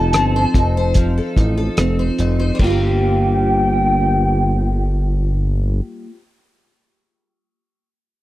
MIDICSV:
0, 0, Header, 1, 5, 480
1, 0, Start_track
1, 0, Key_signature, -2, "minor"
1, 0, Tempo, 821918
1, 1517, Time_signature, 4, 2, 24, 8
1, 4805, End_track
2, 0, Start_track
2, 0, Title_t, "Soft synth lead"
2, 0, Program_c, 0, 80
2, 0, Note_on_c, 0, 81, 110
2, 1019, Note_off_c, 0, 81, 0
2, 1521, Note_on_c, 0, 79, 93
2, 3400, Note_off_c, 0, 79, 0
2, 4805, End_track
3, 0, Start_track
3, 0, Title_t, "Steel-string acoustic guitar"
3, 0, Program_c, 1, 25
3, 0, Note_on_c, 1, 53, 79
3, 0, Note_on_c, 1, 63, 55
3, 0, Note_on_c, 1, 69, 46
3, 0, Note_on_c, 1, 72, 61
3, 90, Note_on_c, 1, 60, 62
3, 208, Note_off_c, 1, 72, 0
3, 210, Note_on_c, 1, 72, 62
3, 323, Note_off_c, 1, 63, 0
3, 330, Note_on_c, 1, 63, 50
3, 448, Note_off_c, 1, 72, 0
3, 451, Note_on_c, 1, 72, 52
3, 563, Note_off_c, 1, 53, 0
3, 565, Note_on_c, 1, 53, 71
3, 685, Note_off_c, 1, 69, 0
3, 687, Note_on_c, 1, 69, 44
3, 796, Note_off_c, 1, 63, 0
3, 803, Note_on_c, 1, 63, 52
3, 918, Note_off_c, 1, 69, 0
3, 920, Note_on_c, 1, 69, 52
3, 1037, Note_off_c, 1, 60, 0
3, 1040, Note_on_c, 1, 60, 70
3, 1161, Note_off_c, 1, 72, 0
3, 1163, Note_on_c, 1, 72, 55
3, 1276, Note_off_c, 1, 63, 0
3, 1283, Note_on_c, 1, 63, 56
3, 1396, Note_off_c, 1, 72, 0
3, 1399, Note_on_c, 1, 72, 53
3, 1486, Note_off_c, 1, 53, 0
3, 1488, Note_on_c, 1, 55, 70
3, 1513, Note_off_c, 1, 60, 0
3, 1516, Note_on_c, 1, 58, 86
3, 1539, Note_off_c, 1, 63, 0
3, 1542, Note_on_c, 1, 65, 80
3, 1557, Note_off_c, 1, 69, 0
3, 1559, Note_on_c, 1, 67, 75
3, 1577, Note_off_c, 1, 72, 0
3, 1579, Note_on_c, 1, 72, 77
3, 3532, Note_off_c, 1, 55, 0
3, 3560, Note_off_c, 1, 58, 0
3, 3586, Note_off_c, 1, 65, 0
3, 3603, Note_off_c, 1, 67, 0
3, 3623, Note_off_c, 1, 72, 0
3, 4805, End_track
4, 0, Start_track
4, 0, Title_t, "Analog synth bass"
4, 0, Program_c, 2, 38
4, 0, Note_on_c, 2, 29, 86
4, 78, Note_on_c, 2, 31, 75
4, 86, Note_off_c, 2, 29, 0
4, 269, Note_off_c, 2, 31, 0
4, 318, Note_on_c, 2, 29, 81
4, 701, Note_off_c, 2, 29, 0
4, 798, Note_on_c, 2, 33, 82
4, 990, Note_off_c, 2, 33, 0
4, 1037, Note_on_c, 2, 29, 77
4, 1229, Note_off_c, 2, 29, 0
4, 1280, Note_on_c, 2, 29, 88
4, 1471, Note_off_c, 2, 29, 0
4, 1515, Note_on_c, 2, 31, 81
4, 3393, Note_off_c, 2, 31, 0
4, 4805, End_track
5, 0, Start_track
5, 0, Title_t, "Drums"
5, 77, Note_on_c, 9, 42, 64
5, 83, Note_on_c, 9, 37, 70
5, 135, Note_off_c, 9, 42, 0
5, 142, Note_off_c, 9, 37, 0
5, 318, Note_on_c, 9, 36, 86
5, 321, Note_on_c, 9, 42, 48
5, 376, Note_off_c, 9, 36, 0
5, 380, Note_off_c, 9, 42, 0
5, 551, Note_on_c, 9, 42, 59
5, 557, Note_on_c, 9, 36, 71
5, 610, Note_off_c, 9, 42, 0
5, 615, Note_off_c, 9, 36, 0
5, 797, Note_on_c, 9, 36, 68
5, 803, Note_on_c, 9, 42, 39
5, 856, Note_off_c, 9, 36, 0
5, 861, Note_off_c, 9, 42, 0
5, 1034, Note_on_c, 9, 42, 65
5, 1039, Note_on_c, 9, 37, 78
5, 1093, Note_off_c, 9, 42, 0
5, 1098, Note_off_c, 9, 37, 0
5, 1276, Note_on_c, 9, 42, 47
5, 1335, Note_off_c, 9, 42, 0
5, 1514, Note_on_c, 9, 49, 78
5, 1515, Note_on_c, 9, 36, 85
5, 1572, Note_off_c, 9, 49, 0
5, 1574, Note_off_c, 9, 36, 0
5, 4805, End_track
0, 0, End_of_file